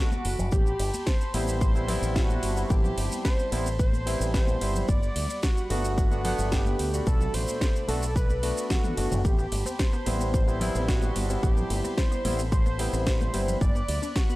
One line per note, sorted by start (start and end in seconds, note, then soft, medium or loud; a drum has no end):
0.00 0.52 F#4 loud
0.00 0.50 A5 medium
0.00 4.84 B5 medium
0.00 0.50 D6 medium
0.12 high conga medium
0.12 cabasa soft
0.12 shaker soft
0.25 0.35 F#1 medium
0.25 open hi-hat loud
0.39 0.48 F#1 medium
0.39 low conga medium
0.39 cabasa medium
0.39 shaker medium
0.51 0.72 A1 loud
0.51 1.08 G4 loud
0.51 4.84 A5 medium
0.51 4.84 C6 medium
0.51 kick loud
0.51 high conga medium
0.51 cabasa medium
0.51 shaker medium
0.66 cabasa soft
0.66 shaker soft
0.79 0.89 G1 medium
0.79 open hi-hat loud
0.79 ride medium
0.94 high conga medium
0.94 cabasa medium
0.94 shaker medium
1.07 1.61 C5 loud
1.07 kick loud
1.07 snare loud
1.07 cabasa medium
1.07 shaker medium
1.21 cabasa soft
1.21 shaker soft
1.34 1.96 A1 medium
1.34 1.72 G3 loud
1.34 1.72 B3 medium
1.34 1.72 C4 medium
1.34 1.72 E4 loud
1.34 open hi-hat loud
1.34 ride medium
1.34 high conga loud
1.47 cabasa medium
1.47 shaker medium
1.61 2.12 C5 loud
1.61 kick loud
1.61 cabasa medium
1.61 shaker medium
1.74 1.85 G3 medium
1.74 1.85 B3 medium
1.74 1.85 C4 medium
1.74 1.85 E4 medium
1.74 high conga medium
1.74 cabasa soft
1.74 shaker soft
1.88 2.53 G3 loud
1.88 2.53 B3 medium
1.88 2.54 C4 medium
1.88 2.54 E4 loud
1.88 open hi-hat loud
1.88 ride medium
1.88 low conga medium
2.02 2.37 A1 loud
2.02 cabasa medium
2.02 shaker medium
2.16 2.72 F#4 loud
2.16 kick loud
2.16 snare loud
2.16 cabasa medium
2.16 shaker medium
2.30 high conga loud
2.30 cabasa soft
2.30 shaker soft
2.43 2.63 G1 medium
2.43 open hi-hat loud
2.43 ride medium
2.56 3.48 G3 medium
2.56 3.49 B3 medium
2.56 3.49 C4 medium
2.56 3.49 E4 medium
2.56 cabasa medium
2.56 shaker medium
2.70 2.90 A1 loud
2.70 3.24 G4 loud
2.70 kick loud
2.70 high conga medium
2.70 cabasa medium
2.70 shaker medium
2.84 low conga medium
2.84 cabasa soft
2.84 shaker soft
2.97 3.07 G1 loud
2.97 open hi-hat loud
2.97 ride medium
3.11 high conga medium
3.11 cabasa medium
3.11 shaker medium
3.25 3.76 C5 loud
3.25 kick loud
3.25 snare loud
3.25 cabasa medium
3.25 shaker medium
3.39 cabasa soft
3.39 shaker soft
3.52 4.14 A1 medium
3.52 3.67 G3 medium
3.52 3.67 B3 medium
3.52 3.67 C4 medium
3.52 3.68 E4 loud
3.52 open hi-hat loud
3.52 ride medium
3.52 high conga medium
3.66 cabasa medium
3.66 shaker medium
3.79 4.30 C5 loud
3.79 kick loud
3.79 cabasa medium
3.79 shaker medium
3.93 high conga medium
3.93 cabasa soft
3.93 shaker soft
4.06 4.58 G3 loud
4.06 4.58 B3 medium
4.06 4.58 C4 medium
4.06 4.58 E4 loud
4.06 open hi-hat loud
4.06 ride medium
4.20 4.55 A1 loud
4.20 cabasa medium
4.20 shaker medium
4.34 4.90 C5 loud
4.34 kick loud
4.34 snare loud
4.34 cabasa medium
4.34 shaker medium
4.47 high conga medium
4.47 cabasa soft
4.47 shaker soft
4.61 4.81 G1 medium
4.61 4.85 G3 medium
4.61 4.85 B3 medium
4.61 4.86 C4 medium
4.61 4.86 E4 medium
4.61 open hi-hat loud
4.61 ride medium
4.75 low conga medium
4.75 cabasa medium
4.75 shaker medium
4.88 5.08 G1 loud
4.88 7.05 G3 medium
4.88 5.45 D5 loud
4.88 7.04 F#5 medium
4.88 9.21 B5 medium
4.88 kick loud
4.88 high conga medium
4.88 cabasa medium
4.88 shaker medium
5.02 cabasa soft
5.02 shaker soft
5.16 5.26 D2 loud
5.16 open hi-hat loud
5.16 ride medium
5.29 high conga medium
5.29 cabasa medium
5.29 shaker medium
5.43 5.70 F#4 loud
5.43 kick loud
5.43 snare loud
5.43 cabasa medium
5.43 shaker medium
5.57 cabasa soft
5.57 shaker soft
5.70 6.32 G1 medium
5.70 6.08 A3 loud
5.70 6.08 B3 medium
5.70 6.08 D4 medium
5.70 6.54 F#4 loud
5.70 6.08 F#4 loud
5.70 open hi-hat loud
5.70 ride medium
5.70 high conga medium
5.84 cabasa medium
5.84 shaker medium
5.98 kick loud
5.98 cabasa medium
5.98 shaker medium
6.11 6.21 A3 medium
6.11 6.21 B3 medium
6.11 6.22 D4 medium
6.11 6.22 F#4 medium
6.11 high conga medium
6.11 cabasa soft
6.11 shaker soft
6.24 6.89 A3 loud
6.24 6.90 B3 medium
6.24 6.90 D4 medium
6.24 6.90 F#5 loud
6.24 open hi-hat loud
6.24 ride medium
6.24 low conga medium
6.38 6.73 G1 loud
6.38 cabasa medium
6.38 shaker medium
6.52 7.06 G4 loud
6.52 kick loud
6.52 snare loud
6.52 cabasa medium
6.52 shaker medium
6.66 high conga medium
6.66 cabasa soft
6.66 shaker soft
6.79 6.99 D2 medium
6.79 open hi-hat loud
6.79 ride medium
6.92 7.85 B2 medium
6.92 7.85 A3 medium
6.92 7.86 D4 medium
6.92 7.86 F#4 medium
6.92 cabasa medium
6.92 shaker medium
7.06 7.27 B1 loud
7.06 9.23 A4 medium
7.06 7.36 A4 loud
7.06 9.23 D5 medium
7.06 kick loud
7.06 high conga medium
7.06 cabasa medium
7.06 shaker medium
7.20 low conga medium
7.20 cabasa soft
7.20 shaker soft
7.34 7.44 A1 loud
7.34 7.88 C5 loud
7.34 open hi-hat loud
7.34 ride medium
7.47 high conga medium
7.47 cabasa medium
7.47 shaker medium
7.61 kick loud
7.61 snare loud
7.61 cabasa medium
7.61 shaker medium
7.76 cabasa soft
7.76 shaker soft
7.88 8.51 B1 medium
7.88 8.03 A3 medium
7.88 8.04 B3 medium
7.88 8.04 D4 medium
7.88 8.04 F#4 loud
7.88 8.14 A4 loud
7.88 open hi-hat loud
7.88 ride medium
7.88 high conga loud
8.02 cabasa medium
8.02 shaker medium
8.16 8.67 B4 loud
8.16 kick loud
8.16 cabasa medium
8.16 shaker medium
8.30 high conga medium
8.30 cabasa soft
8.30 shaker soft
8.43 8.94 A3 medium
8.43 8.94 B3 medium
8.43 8.94 D4 medium
8.43 8.95 F#4 loud
8.43 open hi-hat loud
8.43 ride medium
8.57 cabasa medium
8.57 shaker medium
8.70 9.26 F#4 loud
8.70 kick loud
8.70 snare loud
8.70 high tom medium
8.70 cabasa medium
8.70 shaker medium
8.84 high tom medium
8.84 high conga medium
8.84 cabasa soft
8.84 shaker soft
8.97 9.07 F#1 medium
8.97 9.22 A3 medium
8.97 9.22 B3 medium
8.97 9.22 D4 medium
8.97 9.22 F#4 medium
8.97 open hi-hat loud
8.97 ride medium
9.11 9.21 F#1 medium
9.11 mid tom medium
9.11 low conga medium
9.11 cabasa medium
9.11 shaker medium
9.24 9.45 A1 loud
9.24 9.36 G3 loud
9.24 9.81 G4 loud
9.24 13.57 A5 medium
9.24 14.36 B5 medium
9.24 13.57 C6 medium
9.24 kick loud
9.24 high conga medium
9.24 cabasa medium
9.24 shaker medium
9.38 9.50 B3 loud
9.38 cabasa soft
9.38 shaker soft
9.52 9.62 G1 loud
9.52 9.60 A3 medium
9.52 open hi-hat loud
9.52 ride medium
9.65 9.73 C4 loud
9.65 high conga medium
9.65 cabasa medium
9.65 shaker medium
9.79 9.87 G3 medium
9.79 10.33 C5 loud
9.79 kick loud
9.79 snare loud
9.79 cabasa medium
9.79 shaker medium
9.92 10.04 B3 loud
9.92 cabasa soft
9.92 shaker soft
10.06 10.69 A1 medium
10.06 10.44 G3 loud
10.06 10.14 G3 medium
10.06 10.44 B3 medium
10.06 10.44 C4 medium
10.06 10.45 E4 loud
10.06 open hi-hat loud
10.06 ride medium
10.06 high conga medium
10.20 10.32 C4 medium
10.20 cabasa medium
10.20 shaker medium
10.34 10.45 G3 loud
10.34 10.85 C5 loud
10.34 kick loud
10.34 cabasa medium
10.34 shaker medium
10.47 10.58 G3 medium
10.47 10.58 B3 medium
10.47 10.59 B3 loud
10.47 10.58 C4 medium
10.47 10.58 E4 medium
10.47 high conga medium
10.47 cabasa soft
10.47 shaker soft
10.60 11.26 G3 loud
10.60 10.69 A3 medium
10.60 11.26 B3 loud
10.60 11.26 C4 medium
10.60 11.26 E4 loud
10.60 open hi-hat loud
10.60 ride medium
10.60 low conga loud
10.75 11.10 A1 loud
10.75 10.83 C4 loud
10.75 cabasa medium
10.75 shaker medium
10.88 10.96 G3 medium
10.88 11.39 F#4 loud
10.88 kick loud
10.88 snare loud
10.88 cabasa medium
10.88 shaker medium
11.02 11.14 B3 loud
11.02 high conga medium
11.02 cabasa soft
11.02 shaker soft
11.16 11.36 G1 medium
11.16 11.24 G3 medium
11.16 open hi-hat loud
11.16 ride medium
11.28 12.21 G3 medium
11.28 12.21 B3 medium
11.28 12.22 C4 medium
11.28 11.41 C4 medium
11.28 12.22 E4 medium
11.28 cabasa medium
11.28 shaker medium
11.43 11.63 A1 loud
11.43 11.55 G3 loud
11.43 11.94 G4 loud
11.43 kick loud
11.43 high conga loud
11.43 cabasa medium
11.43 shaker medium
11.57 11.68 B3 loud
11.57 low conga medium
11.57 cabasa soft
11.57 shaker soft
11.70 11.80 G1 loud
11.70 11.78 A3 medium
11.70 open hi-hat loud
11.70 ride medium
11.84 11.92 C4 loud
11.84 high conga medium
11.84 cabasa medium
11.84 shaker medium
11.97 12.05 G3 medium
11.97 12.48 C5 loud
11.97 kick loud
11.97 snare loud
11.97 cabasa medium
11.97 shaker medium
12.11 12.23 B3 loud
12.11 cabasa soft
12.11 shaker soft
12.24 12.87 A1 medium
12.24 12.40 G3 medium
12.24 12.33 G3 medium
12.24 12.40 B3 medium
12.24 12.40 C4 medium
12.24 12.40 E4 loud
12.24 open hi-hat loud
12.24 ride medium
12.24 high conga loud
12.39 12.50 C4 medium
12.39 cabasa medium
12.39 shaker medium
12.52 12.64 G3 loud
12.52 13.03 C5 loud
12.52 kick loud
12.52 cabasa medium
12.52 shaker medium
12.66 12.77 B3 loud
12.66 high conga medium
12.66 cabasa soft
12.66 shaker soft
12.79 13.30 G3 loud
12.79 12.87 A3 medium
12.79 13.31 B3 medium
12.79 13.31 C4 medium
12.79 13.31 E4 loud
12.79 open hi-hat loud
12.79 ride medium
12.93 13.28 A1 loud
12.93 13.01 C4 loud
12.93 cabasa medium
12.93 shaker medium
13.06 13.14 G3 medium
13.06 13.57 C5 loud
13.06 kick loud
13.06 snare loud
13.06 cabasa medium
13.06 shaker medium
13.20 13.32 B3 loud
13.20 high conga medium
13.20 cabasa soft
13.20 shaker soft
13.33 13.54 G1 medium
13.33 13.58 G3 medium
13.33 13.42 G3 medium
13.33 13.58 B3 medium
13.33 13.58 C4 medium
13.33 13.58 E4 medium
13.33 open hi-hat loud
13.33 ride medium
13.48 13.59 C4 medium
13.48 low conga medium
13.48 cabasa medium
13.48 shaker medium
13.61 13.81 G1 loud
13.61 13.73 F#3 loud
13.61 14.17 D5 loud
13.61 14.36 F#6 medium
13.61 kick loud
13.61 high conga medium
13.61 cabasa medium
13.61 shaker medium
13.75 13.86 B3 loud
13.75 cabasa soft
13.75 shaker soft
13.88 13.98 D2 loud
13.88 13.96 G3 medium
13.88 open hi-hat loud
13.88 ride medium
14.02 14.10 D4 loud
14.02 high conga medium
14.02 cabasa medium
14.02 shaker medium
14.16 14.23 F#3 medium
14.16 14.36 F#4 loud
14.16 kick loud
14.16 snare loud
14.16 cabasa medium
14.16 shaker medium
14.29 14.36 B3 loud
14.29 cabasa soft
14.29 shaker soft